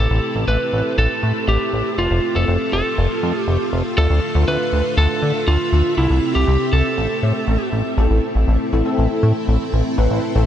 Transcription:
Already playing: E4 A4
0.00 A3 C4
0.10 A1
0.35 A1
0.48 A1 B4
0.73 A1
0.98 A1 A4
1.23 A2
1.48 A1 G4
1.73 A1
1.98 F1 A3 F4
2.10 F1
2.35 F1 A4
2.48 F1
2.73 F1 A4
2.98 F1
3.23 F2
3.40 G4
3.48 F1
3.73 F1
3.98 D2 D3 A3 A4 E5
4.10 D2
4.35 D2
4.48 D2 B4
4.73 D2
4.98 D2 A4
5.23 D3
5.48 D2 F4
5.73 D2
5.98 C2 C3 C4 E4 G4
6.10 C2
6.35 C2 G4
6.48 C2
6.73 C2 A4
6.98 A1 A3
7.23 A2
7.48 A1
7.73 A1
7.98 A1 A3 C4 E4 A4
8.10 A1
8.35 A1
8.48 A1
8.73 A1 C4 E4 A4
8.85 C4 E4 A4
8.98 A1
9.23 A2
9.48 A1
9.73 A1
9.98 A1 C4 E4 B4
10.10 A1
10.35 A1 C4 E4 A4

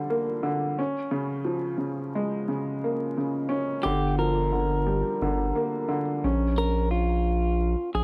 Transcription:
Already playing: D3 F3 G3
0.10 A#3
0.43 D3
0.79 C#4
1.11 C#3
1.45 F3
1.78 C#3
2.15 G#3
2.48 C#3
2.84 A#3
3.17 C#3
3.49 C#4
3.83 G1 D3 G4
4.18 F3 A#4
4.52 D3
4.86 G3
5.21 G1 D3
5.55 A#3
5.89 D3
6.24 A#1 C#4
6.58 A#4
6.91 F4
7.94 A#1 G#4

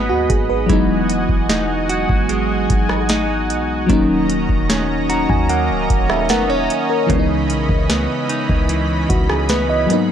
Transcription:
Already playing: G#1 G#2 F#3 A#3 B3 D#4 G#4 D#5 F#5 B5
0.10 D#2 F#4
0.30 G#1 G#4, kick, closed hi-hat
0.49 B4
0.66 E1 E3 F#3 G#3 F#4 F#5 G#5, kick, closed hi-hat
0.70 B3 D#4
1.10 closed hi-hat
1.29 E1, kick
1.49 D#4, snare, closed hi-hat
1.89 F#4, closed hi-hat
2.09 G#1, kick
2.29 G#3, closed hi-hat
2.70 G#1, kick, closed hi-hat
2.89 cross-stick
3.09 D#4, snare, closed hi-hat
3.50 B1, closed hi-hat
3.86 D#1 D#3 F#3 A#3 C#4 D#5 A#5, kick, closed hi-hat
3.90 C#4 D#4
4.30 closed hi-hat
4.49 D#1, kick
4.70 C#4, snare, closed hi-hat
5.09 F#4 A#5, closed hi-hat
5.29 D#2 G#5, kick
5.49 A#3 F#5, closed hi-hat
5.70 C#1
5.90 D#1, kick, closed hi-hat
6.10 E5, cross-stick
6.29 F#1 B3 A#4 F#5, snare, closed hi-hat
6.50 D#1 C#4 C#5
6.70 closed hi-hat
6.90 A#4
7.06 C#2 C#3 E3 G#3 B5, kick, closed hi-hat
7.11 B3 D4
7.19 D#4
7.50 B1, closed hi-hat
7.69 C#2, kick
7.89 B3, snare, closed hi-hat
8.29 D#4, closed hi-hat
8.49 C#2, kick
8.69 E3, closed hi-hat
9.09 C#2 F#4, kick, closed hi-hat
9.29 G#4, cross-stick
9.49 B3 B4, snare, closed hi-hat
9.70 D#5
9.87 G#2 F#3 A#3 D#4 G#4 F#5, closed hi-hat
9.91 B3 D#4

